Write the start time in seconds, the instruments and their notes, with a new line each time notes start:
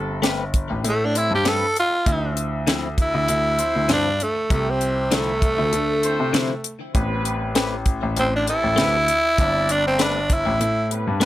Already playing: grand piano G1, horn section A3 C4 G4 A4
0.22 clean electric guitar A3 C4 G4 B4, snare, closed hi-hat
0.54 kick, closed hi-hat
0.70 grand piano A1
0.84 grand piano A2, closed hi-hat
0.88 tenor saxophone A3
1.05 tenor saxophone D4
1.13 horn section C4 G4 C5, closed hi-hat
1.18 tenor saxophone E4
1.31 grand piano G2
1.35 tenor saxophone G4
1.45 clean electric guitar A3 C4 G4 B4, tenor saxophone A4, snare, closed hi-hat
1.76 tenor saxophone F4, closed hi-hat
2.05 grand piano D2, horn section E4 F4 C5 E5, kick, closed hi-hat
2.37 closed hi-hat
2.67 clean electric guitar D3 F3 C4 E4, snare, closed hi-hat
2.98 tenor saxophone E4, kick, closed hi-hat
3.14 grand piano D2
3.28 grand piano D2, closed hi-hat
3.58 horn section F3 C4 E4 C5, closed hi-hat
3.75 grand piano D2
3.89 grand piano G2, clean electric guitar D3 F3 C4 E4, snare, closed hi-hat
3.93 tenor saxophone D4
4.20 tenor saxophone A3, closed hi-hat
4.49 grand piano C2, horn section G3 E4 F4 G4, kick, closed hi-hat
4.53 tenor saxophone A3
4.70 tenor saxophone C4
4.81 closed hi-hat
5.11 clean electric guitar D3 F3 C4 E4, tenor saxophone A3, snare, closed hi-hat
5.42 kick, closed hi-hat
5.58 grand piano D2
5.73 grand piano D3, closed hi-hat
6.02 horn section C4 E4 F4 C5, closed hi-hat
6.20 grand piano C3
6.33 clean electric guitar D3 F3 C4 E4, snare, closed hi-hat
6.64 closed hi-hat
6.93 grand piano A1, horn section B3 C4 G4 B4, kick, closed hi-hat
7.25 closed hi-hat
7.55 clean electric guitar A3 C4 G4 B4, snare, closed hi-hat
7.86 kick, closed hi-hat
8.03 grand piano A1
8.17 grand piano A1, tenor saxophone C4, closed hi-hat
8.36 tenor saxophone D4
8.46 horn section A3 C4 G4 A4, tenor saxophone E4, closed hi-hat
8.64 grand piano A1
8.76 grand piano D2, clean electric guitar A3 C4 G4 B4, snare, closed hi-hat
9.08 closed hi-hat
9.38 grand piano G1, horn section C4 D4 G4 D5, kick, closed hi-hat
9.69 tenor saxophone D4, closed hi-hat
9.87 tenor saxophone C4
9.99 clean electric guitar A3 C4 G4 B4, tenor saxophone D4, snare, closed hi-hat
10.30 tenor saxophone E4, kick, closed hi-hat
10.46 grand piano A1
10.60 grand piano A2, closed hi-hat
10.89 horn section B3 C4 G4 B4, closed hi-hat
11.07 grand piano G2
11.20 clean electric guitar A3 C4, snare, closed hi-hat